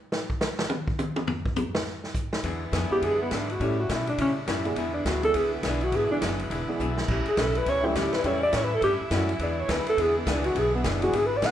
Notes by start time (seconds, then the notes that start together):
0.12 snare
0.30 kick
0.41 snare, hi-hat pedal
0.59 snare
0.70 high tom
0.88 kick
0.99 hi-hat pedal, high tom
1.16 high tom
1.27 floor tom
1.45 kick
1.56 floor tom, hi-hat pedal
1.75 snare
1.86 snare
2.04 snare
2.14 kick, hi-hat pedal
2.33 snare
2.43 E2 D3 E3 G#3 B3 D4 E4 G#4, kick, ride
2.72 F2 E3 B3 D4 G#4, kick, snare, hi-hat pedal, ride
2.90 G#3 B3 D4 E4 G4 B4, muted upright bass stroke
3.01 F#2 E3 B3 D4 G#4, kick, ride
3.22 B3
3.31 G#2 E3 B3 D4 G#4, kick, snare, hi-hat pedal, ride
3.50 F#4, ride
3.60 A2 C#3 G3 A3 C#4 E4 A4, kick, ride
3.64 G4
3.80 F#4
3.89 A2 B2 G3 C#4 E4, kick, snare, hi-hat pedal, ride
3.94 E4
4.07 D4, ride
4.18 A2 C#3 G3 C#4 E4, kick, ride
4.47 F#2 A2 G3 C#4 E4, kick, snare, hi-hat pedal, ride
4.65 E3 G#3 B3 D4 G#4, ride
4.75 E2 D3 E3 G#3 B3 D4 E4 G#4, kick, ride
4.94 D4
5.05 D2 E3 B3 D4 F#4 G#4, kick, snare, hi-hat pedal, ride
5.23 E3 G#3 B3 D4 G#4 A4, ride
5.34 C#2 E3 B3 D4 G#4, kick, ride
5.54 B3
5.63 B1 E3 B3 D4 G#4, kick, snare, hi-hat pedal, ride
5.81 F#4, ride
5.92 G#1 E3 B3 D4 G#4, kick, ride
5.96 G#4
6.11 E3 G#3 B3 D4 G#4
6.21 F#1 E3 B3 D4 G#4, kick, snare, hi-hat pedal, ride
6.39 ride
6.50 E1 E3 B3 D4 G#4, kick, ride
6.68 E3 G#3 B3 D4 G#4, muted upright bass stroke
6.79 B1 E3 B3 D4 G#4, hi-hat pedal
6.97 snare
7.08 A1 A2 C#3 G3 A3 C#4 E4 G4, kick, crash
7.26 G#4, muted upright bass stroke, ride
7.37 B1 A2 G3 C#4 E4 A4, kick, snare, hi-hat pedal, ride
7.55 B4, ride
7.66 C#2 A2 G3 C#4 E4 C#5, kick, ride
7.83 E3 G3 A3 C#4 E4 G4
7.95 D2 A2 G3 C#4 E4 G4, kick, snare, hi-hat pedal, ride
8.13 B4, muted upright bass stroke, snare, ride
8.24 E2 A2 E3 G3 A3 C#4 E4 G4 C#5, kick, ride
8.43 D5
8.52 A2 G3 C#4 E4 C#5, kick, snare, hi-hat pedal, ride
8.64 B4
8.75 A4
8.81 G2 A2 G3 C#4 E4 G4, kick, ride
9.01 muted upright bass stroke
9.10 F#2 A2 E3 G3 A3 C#4 E4 F#4, kick, snare, hi-hat pedal, ride
9.29 ride
9.39 E2 D3 E3 G#3 B3 D4 G#4 D5, kick, ride
9.60 C#5
9.68 D2 E3 B3 D4 G#4 B4, kick, snare, hi-hat pedal, ride
9.85 A4, muted upright bass stroke, ride
9.97 E2 E3 B3 D4 G#4, kick, ride
10.18 B3
10.26 C#2 E3 B3 D4 G#4, kick, snare, hi-hat pedal, ride
10.30 D4
10.44 F#4, ride
10.55 B1 E3 B3 D4 G#4, kick, ride
10.75 B3
10.84 F#1 E3 B3 D4 G#4, kick, snare, hi-hat pedal, ride
11.02 E3 G#3 B3 D4 F#4 G#4, ride
11.13 G#1 E3 B3 D4 G#4, kick, ride
11.26 B4
11.37 D5
11.41 A1 E3 B3 D4 G#4, kick, snare, hi-hat pedal, ride
11.46 F#5